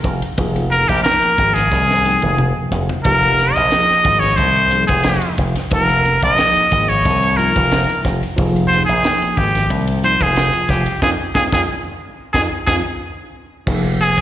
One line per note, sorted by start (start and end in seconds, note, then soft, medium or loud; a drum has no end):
0.00 0.15 F3 medium
0.00 0.15 A#3 medium
0.00 0.15 D#4 medium
0.00 0.16 G#4 medium
0.00 hi-hat pedal medium
0.04 0.20 F1 medium
0.04 kick medium
0.22 ride medium
0.38 0.84 F1 loud
0.38 0.91 F3 medium
0.38 0.91 A#3 medium
0.38 0.92 D#4 medium
0.38 0.92 G#4 medium
0.38 kick loud
0.38 ride medium
0.56 ride medium
0.71 0.90 A#4 medium
0.71 hi-hat pedal medium
0.89 1.03 A#1 medium
0.89 1.02 G4 medium
0.89 kick medium
0.89 ride medium
1.03 1.83 F3 medium
1.03 1.84 A#3 medium
1.03 1.84 D#4 medium
1.03 1.55 A#4 loud
1.03 snare loud
1.03 ride medium
1.07 1.84 A#4 medium
1.22 muted slap bass stroke soft
1.22 ride medium
1.38 1.68 G#1 medium
1.38 kick medium
1.38 hi-hat pedal medium
1.54 2.71 G#4 medium
1.54 snare soft
1.54 ride medium
1.72 2.18 C2 medium
1.72 kick medium
1.72 snare medium
1.91 snare soft
2.04 2.83 F3 medium
2.04 2.83 A#3 medium
2.04 2.83 D#4 medium
2.04 2.83 G5 medium
2.04 hi-hat pedal medium
2.22 2.53 F1 medium
2.22 high tom medium
2.38 mid tom medium
2.71 2.87 F1 medium
2.71 floor tom medium
2.71 hi-hat pedal medium
2.89 floor tom medium
3.04 3.51 F1 medium
3.04 3.58 F3 medium
3.04 3.58 A#3 medium
3.04 3.58 D#4 medium
3.04 3.59 G4 medium
3.04 3.55 A#4 loud
3.04 kick loud
3.04 ride medium
3.22 ride medium
3.38 snare soft
3.38 hi-hat pedal medium
3.53 3.70 A#1 medium
3.53 4.21 D#5 loud
3.53 ride medium
3.70 4.49 F3 medium
3.70 4.49 A#3 medium
3.70 4.49 D#4 medium
3.70 4.50 G#4 medium
3.70 snare medium
3.70 ride medium
3.89 muted slap bass stroke soft
3.89 snare soft
3.89 ride soft
4.04 4.35 G#1 medium
4.04 kick medium
4.04 hi-hat pedal medium
4.19 4.37 C#5 medium
4.19 ride medium
4.23 snare soft
4.36 4.84 C2 medium
4.36 4.86 C5 medium
4.36 kick medium
4.36 ride medium
4.56 ride medium
4.71 5.49 F3 medium
4.71 5.50 A#3 medium
4.71 5.50 D#4 medium
4.71 5.50 G#4 medium
4.71 hi-hat pedal medium
4.87 5.19 F1 medium
4.87 5.34 G#4 medium
4.87 kick medium
4.87 ride medium
5.03 snare loud
5.03 ride medium
5.22 ride medium
5.38 5.54 F1 medium
5.38 kick medium
5.38 hi-hat pedal medium
5.56 snare soft
5.56 ride medium
5.70 6.17 F1 medium
5.70 6.23 F3 medium
5.70 6.24 A#3 medium
5.70 6.24 D#4 medium
5.70 6.24 A#4 medium
5.70 6.20 A#4 medium
5.70 kick loud
5.70 ride medium
5.89 ride medium
6.05 hi-hat pedal medium
6.22 6.37 A#1 medium
6.22 6.90 D#5 loud
6.22 kick medium
6.22 ride medium
6.36 7.14 F3 medium
6.36 7.15 A#3 medium
6.36 7.15 D#4 medium
6.36 7.15 G#4 medium
6.36 snare loud
6.36 ride medium
6.56 muted slap bass stroke soft
6.56 ride medium
6.72 7.01 G#1 medium
6.72 kick medium
6.72 hi-hat pedal medium
6.89 7.38 C#5 medium
6.89 ride medium
7.05 7.51 C2 medium
7.05 kick medium
7.05 ride medium
7.23 ride medium
7.37 8.15 F3 medium
7.37 8.15 A#3 medium
7.37 8.15 D#4 medium
7.37 8.15 F4 medium
7.37 8.03 A#4 medium
7.37 hi-hat pedal medium
7.56 7.86 F1 medium
7.56 kick medium
7.56 ride medium
7.71 snare medium
7.71 ride medium
7.89 ride medium
8.05 8.20 F1 medium
8.05 kick medium
8.05 snare soft
8.05 hi-hat pedal medium
8.23 ride medium
8.36 8.83 F1 loud
8.36 8.89 F3 medium
8.36 8.90 A#3 medium
8.36 8.90 D#4 medium
8.36 8.90 G#4 medium
8.36 kick loud
8.36 ride medium
8.56 ride soft
8.68 8.85 C5 medium
8.72 snare soft
8.72 hi-hat pedal medium
8.85 9.02 A#1 medium
8.85 9.39 G#4 medium
8.89 ride medium
9.03 9.81 F3 medium
9.03 9.81 A#3 medium
9.03 9.81 D#4 medium
9.03 9.82 G5 medium
9.03 snare loud
9.03 ride medium
9.22 muted slap bass stroke soft
9.22 ride medium
9.37 9.67 G#1 loud
9.37 9.70 G4 medium
9.37 kick medium
9.37 hi-hat pedal medium
9.55 snare soft
9.55 ride medium
9.70 10.15 C2 medium
9.70 kick medium
9.70 ride medium
9.88 ride medium
10.02 10.80 F3 medium
10.02 10.80 A#3 medium
10.02 10.80 D#4 medium
10.02 10.80 F4 medium
10.02 10.24 C5 loud
10.02 hi-hat pedal medium
10.21 10.50 F1 medium
10.21 10.72 G#4 loud
10.21 kick medium
10.21 ride medium
10.36 snare medium
10.36 ride medium
10.53 ride medium
10.69 10.85 F1 medium
10.69 11.01 G4 medium
10.69 kick medium
10.69 snare soft
10.69 hi-hat pedal medium
10.86 ride medium
11.02 11.15 F2 loud
11.02 11.13 C4 medium
11.02 11.13 D#4 medium
11.02 11.14 F4 medium
11.02 11.10 G#4 medium
11.02 kick medium
11.02 snare medium
11.35 11.48 F2 loud
11.35 11.47 C4 medium
11.35 11.47 D#4 medium
11.35 11.47 F4 medium
11.35 11.43 G#4 medium
11.35 kick medium
11.35 snare medium
11.52 11.64 F2 loud
11.52 11.64 C4 medium
11.52 11.64 D#4 medium
11.52 11.64 F4 medium
11.52 11.61 G#4 medium
11.52 kick medium
11.52 snare medium
12.33 12.48 F2 medium
12.33 12.46 C4 loud
12.33 12.46 D#4 loud
12.33 12.46 F4 medium
12.33 12.42 G#4 medium
12.33 kick medium
12.33 snare medium
12.67 12.81 F2 medium
12.67 12.78 C4 medium
12.67 12.79 D#4 medium
12.67 12.78 F4 medium
12.67 12.75 G#4 loud
12.67 kick medium
12.67 snare medium
13.66 14.21 F1 medium
13.66 14.21 F3 medium
13.66 14.21 A#3 medium
13.66 14.21 D#4 medium
13.66 14.21 G#4 medium
13.66 kick medium
13.66 crash medium
14.00 14.21 G#4 loud
14.00 hi-hat pedal medium
14.00 ride soft
14.18 kick medium
14.18 ride medium